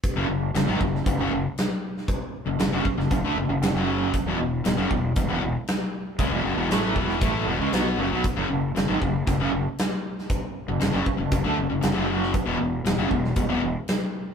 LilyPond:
<<
  \new Staff \with { instrumentName = "Distorted electric guitar" } { \clef bass \time 4/4 \key fis \minor \tempo 4 = 117 r16 <fis, cis>16 <fis, cis>8 <fis, cis>16 <gis, dis>16 <fis, cis>8 <fis, cis>16 <fis, cis>16 <fis, cis>16 r4 r16 | r8. <fis, cis>16 <fis, cis>16 <fis, cis>16 r16 <fis, cis>16 <fis, cis>16 <d a>16 <fis, cis>16 <fis, cis>16 <fis, cis>16 <fis, cis fis>8. | r16 <e, b,>16 <e, b,>8 <e, b,>16 <fis, cis>16 <e, b,>8 <e, b,>16 <e, b,>16 <e, b,>16 r4 r16 | <cis gis>16 <e, b,>16 <fis, cis>16 <e, b,>16 <a, e a>8 <e, b, e>8 <a, e a>8 <e, b,>16 <cis gis>16 <b, fis b>8 <fis, cis>16 <b, fis>16 |
r16 <fis, cis>16 <fis, cis>8 <fis, cis>16 <gis, dis>16 <fis, cis>8 <fis, cis>16 <fis, cis>16 <fis, cis>16 r4 r16 | r8. <fis, cis>16 <fis, cis>16 <fis, cis>16 r16 <fis, cis>16 <fis, cis>16 <d a>16 <fis, cis>16 <fis, cis>16 <fis, cis>16 <fis, cis fis>8. | r16 <e, b,>16 <e, b,>8 <e, b,>16 <fis, cis>16 <e, b,>8 <e, b,>16 <e, b,>16 <e, b,>16 r4 r16 | }
  \new Staff \with { instrumentName = "Overdriven electric guitar" } { \clef bass \time 4/4 \key fis \minor r16 <fis, cis>16 <fis, cis>8 <fis, cis>16 <gis, dis>16 <fis, cis>8 <fis, cis>16 <fis, cis>16 <fis, cis>16 r4 r16 | r8. <fis, cis>16 <fis, cis>16 <fis, cis>16 r16 <fis, cis>16 <fis, cis>16 <d a>16 <fis, cis>16 <fis, cis>16 <fis, cis>16 <fis, cis fis>8. | r16 <e, b,>16 <e, b,>8 <e, b,>16 <fis, cis>16 <e, b,>8 <e, b,>16 <e, b,>16 <e, b,>16 r4 r16 | <cis gis>16 <e, b,>16 <fis, cis>16 <e, b,>16 <a, e a>8 <e, b, e>8 <a, e a>8 <e, b,>16 <cis gis>16 <b, fis b>8 <fis, cis>16 <b, fis>16 |
r16 <fis, cis>16 <fis, cis>8 <fis, cis>16 <gis, dis>16 <fis, cis>8 <fis, cis>16 <fis, cis>16 <fis, cis>16 r4 r16 | r8. <fis, cis>16 <fis, cis>16 <fis, cis>16 r16 <fis, cis>16 <fis, cis>16 <d a>16 <fis, cis>16 <fis, cis>16 <fis, cis>16 <fis, cis fis>8. | r16 <e, b,>16 <e, b,>8 <e, b,>16 <fis, cis>16 <e, b,>8 <e, b,>16 <e, b,>16 <e, b,>16 r4 r16 | }
  \new Staff \with { instrumentName = "Fingered electric bass" } { \clef bass \time 4/4 \key fis \minor r16 fis,,16 fis,,8 fis,,16 gis,,16 fis,,8 fis,,16 fis,,16 fis,,16 r4 r16 | r8. fis,,16 fis,,16 fis,,16 r16 fis,,16 fis,,16 d,16 fis,,16 fis,,16 fis,,16 fis,,8. | r16 e,,16 e,,8 e,,16 fis,,16 e,,8 e,,16 e,,16 e,,16 r4 r16 | cis,16 e,,16 fis,,16 e,,16 a,,8 e,,8 a,,8 e,,16 cis,16 b,,8 fis,,16 b,,16 |
r16 fis,,16 fis,,8 fis,,16 gis,,16 fis,,8 fis,,16 fis,,16 fis,,16 r4 r16 | r8. fis,,16 fis,,16 fis,,16 r16 fis,,16 fis,,16 d,16 fis,,16 fis,,16 fis,,16 fis,,8. | r16 e,,16 e,,8 e,,16 fis,,16 e,,8 e,,16 e,,16 e,,16 r4 r16 | }
  \new DrumStaff \with { instrumentName = "Drums" } \drummode { \time 4/4 <hh bd>4 <hh sn>8 bd16 sn16 <hh bd>4 <hh sn>8. sn16 | <hh bd>4 <hh sn>8 bd16 sn16 <hh bd>4 <hh sn>4 | <hh bd>4 <hh sn>8 bd8 <hh bd>4 <hh sn>4 | <hh bd>4 <hh sn>8 bd16 sn16 <hh bd>4 <hh sn>4 |
<hh bd>4 <hh sn>8 bd8 <hh bd>4 <hh sn>8. sn16 | <hh bd>4 <hh sn>8 bd8 <hh bd>4 <hh sn>8. sn16 | <hh bd>4 <hh sn>8 bd16 sn16 <hh bd>4 <hh sn>4 | }
>>